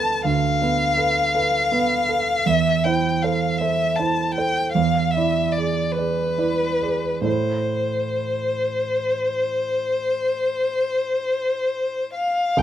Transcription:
Already playing: D2 B3 A4 B4 A5
0.25 D2 F5
0.62 B3 B4
0.97 A4 B4
1.35 A4 B4
1.72 B3 B4
2.09 A4 B4
2.46 E2 E5
2.84 E4 C5 G5
3.22 A4 C5 F5
3.58 A4 C5 E5
3.96 E4 C5 A5
4.32 G5
4.37 A4 C5
4.72 E2 F5
5.11 E5
5.17 E4 D5
5.52 D5
5.58 G#4 D5
5.92 B4
5.98 G#4 D5
6.38 E4 D5
6.82 G#4 D5
7.22 A2 E4 A4
7.26 C5
12.13 F5
12.57 C2 G5

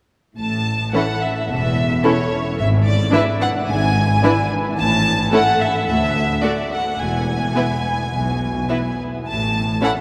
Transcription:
0.37 A1 A2 A5
0.93 E3 C#4 E4 A4 F#5
1.21 E5
1.49 E1 E2 E5
2.04 E3 C#4 E4 A4 C#5
2.58 G#1 G#2 E5
2.86 D5
3.12 E3 D4 E4 B4 E5
3.41 F#5
3.68 G#1 G#2 G#5
4.23 E3 D4 E4 B4
4.78 A1 A2 A5
5.32 A3 C#4 E4 A4 F#5
5.60 E5
5.87 D2 E5
6.43 A3 D4 F#4 A4 D5
6.72 F#5
6.99 E1 E2 G#5
7.56 E3 B3 E4 B4
8.12 B1 B2
8.69 E3 B3 E4 B4
9.26 A1 A2 A5
9.82 E3 C#4 E4 A4 F#5

